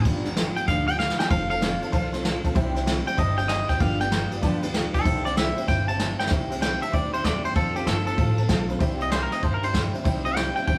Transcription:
0.05 G1 G2 D3 F3 B3 F4 G4, kick, ride
0.24 F3 B3 F4 G4, snare, ride
0.36 F3 B3 F4 G4, snare, ride
0.56 F3 B3 F4 G4 G5, ride
0.67 D2 G2 D3 F3 B3 F4 G4 F5, kick, snare, ride
0.88 F3 B3 F4 G4 G5, ride
0.99 F3 B3 F4 G4 F5, snare
1.10 snare
1.18 F3 B3 F4 G4 G5, snare
1.30 F1 F3 C4 F4 A4 C5 F5 A5, kick, ride
1.50 C4 F4 A4 C5 F5 A5, ride
1.61 F3 C4 F4 A4 C5 F5 A5, snare, ride
1.82 C4 F4 A4 C5 F5 A5, ride
1.92 C2 F3 C4 F4 A4 C5 F5 A5, kick, ride
2.12 C4 F4 A4 C5 F5 C6, snare, ride
2.23 F3 C4 F4 A4 C5 F5 A5, snare, ride
2.44 C4 F4 A4 C5 F5 A5, kick, ride
2.55 C2 C3 G3 C4 E4 G4 C5 E5 G5, kick, ride
2.75 C4 E4 G4 C5 E5 G5, snare, ride
2.86 G3 C4 E4 G4 C5 E5 G5, snare, ride
3.06 C4 E4 G4 C5 E5 G5, ride
3.17 G1 C3 G3 C4 E4 G4 C5 D#5 E5 A5, kick, snare, ride
3.37 C4 E4 G4 C5 E5 G5, ride
3.48 G3 C4 E4 G4 C5 D#5 E5 G5, snare, ride
3.68 C4 E4 G4 C5 E5 G5, kick, snare, ride
3.79 G1 G2 D3 F3 B3 F4 G4 B4 D5 F5 G5, kick, ride
4.00 F3 B3 F4 G4 B4 D5 G5, snare, ride
4.11 F3 B3 F4 B4 D5 G5, snare, ride
4.31 F3 B3 F4 G4 B4 D5 G5, ride
4.42 D2 G2 D3 F3 B3 F4 G4 B4 D5 A5, kick, snare, ride
4.62 F3 B3 F4 G4 B4 D5 G5, ride
4.73 F3 B3 F4 G4 B4 D5 G5, snare, ride
4.94 F3 B3 F4 G4 A4 B4 D5 G5, kick, ride
5.04 C2 C3 G3 C4 E4 G4 C5 E5 G5, kick, ride
5.25 C4 E4 G4 C5 D5 E5 G5, snare, ride
5.36 G3 C4 E4 G4 C5 E5 G5, snare, ride
5.56 C4 E4 G4 C5 E5 G5, ride
5.68 G1 C3 G3 C4 E4 G4 C5 E5 G5, kick, snare, ride
5.88 C4 E4 G4 C5 E5 A5, ride
5.99 G3 C4 E4 G4 C5 E5 G5, snare, ride
6.18 C4 E4 G4 C5 E5 G5, snare
6.27 C2 C3 C5 E5 G5, kick, snare, ride
6.31 G3 C4 E4 G4
6.50 C4 E4 G4 C5 E5 G5, ride
6.61 C3 G3 C4 E4 G4 C5 E5 G5, snare, ride
6.81 C4 E4 G4 C5 E5 A5, ride
6.92 D2 G3 C4 E4 G4 C5 D5 E5 G5, kick, ride
7.12 C4 E4 G4 C5 E5 G5, ride
7.24 E2 C3 G3 C4 E4 G4 C5 D5 E5 A5, kick, snare, ride
7.44 C4 E4 G4 C5 E5 G5, ride
7.54 F2 F3 C4 F4 A4 C5 F5 A5, kick, ride
7.75 C4 F4 G4 A4 C5 F5 A5, ride
7.86 G1 F3 C4 F4 A4 C5 F5 A5, snare, ride
8.06 C4 F4 A4 C5 F5 A5, ride
8.17 A1 F3 C4 F4 A4 C5 F5 A5, kick, ride
8.38 C4 F4 A4 C5 F5 A5, ride
8.48 B1 F3 C4 F4 A4 C5 F5 A5, kick, snare, ride
8.69 C4 F4 A4 C5 F5 B5, ride
8.79 C2 C3 G3 C4 E4 G4 C5 E5 G5, kick, ride
8.99 C4 E4 G4 C5 D#5 E5 G5, ride
9.10 C3 G3 C4 E4 G4 C5 E5, snare, ride
9.23 A#4
9.31 C4 E4 G4 C5 D#5 E5 G5, snare, ride
9.42 G2 G3 C4 E4 G4 C5 E5 A5, kick, ride
9.54 A#4
9.62 C4 E4 G4 C5 E5 G5, ride
9.73 C3 G3 C4 E4 G4 C5 E5 G5, kick, snare, ride
9.93 C4 E4 G4 C5 E5 G5, ride
10.04 C2 C3 G3 C4 E4 G4 C5 E5 G5, kick, ride
10.24 C4 E4 G4 C5 D#5 E5 G5, ride
10.36 C3 G3 C4 E4 G4 C5 E5 G5, snare, ride
10.56 C4 E4 G4 C5 E5 G5, ride
10.67 G2 G3 C4 E4 G4 C5 E5 G5, kick, ride

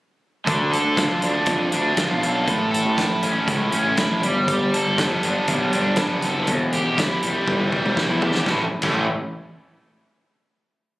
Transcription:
0.47 D2 D3, kick, closed hi-hat
0.72 A4, closed hi-hat
0.84 D2
0.96 F4, kick, snare, closed hi-hat
1.21 D2 D4, closed hi-hat
1.46 F2 D3, kick, closed hi-hat
1.72 D2 D4, closed hi-hat
1.97 F4, kick, snare, closed hi-hat
2.11 B1
2.22 A4, closed hi-hat
2.46 A1 A2, kick, closed hi-hat
2.71 A4, closed hi-hat
2.85 A1
2.96 E4, kick, snare, closed hi-hat
3.22 A1 C#4, closed hi-hat
3.47 C#2 A3, kick, closed hi-hat
3.71 A1 C#4, closed hi-hat
3.97 E4, kick, snare, closed hi-hat
4.11 A1
4.22 G1 G3, closed hi-hat
4.48 G3, kick, closed hi-hat
4.74 A4, closed hi-hat
4.86 G1
4.98 B3, kick, snare, closed hi-hat
5.23 G1 D4, closed hi-hat
5.48 B1 G3, kick, closed hi-hat
5.73 G1 D4, closed hi-hat
5.96 B3, kick, snare, closed hi-hat
6.12 F#1
6.22 A4, closed hi-hat
6.47 E1 E2, kick, closed hi-hat
6.72 G4, closed hi-hat
6.86 E1
6.98 E4, kick, snare, closed hi-hat
7.23 E1 G3, closed hi-hat
7.48 G1 E3, kick
7.72 E1 G3, kick
7.86 mid tom
7.96 E4, kick, snare
8.10 E2
8.22 G4, floor tom
8.35 snare
8.46 A1 A2 E3 A3 C#4 E4, kick, snare
8.82 A1 A2 E3 A3 C#4 E4, kick, crash

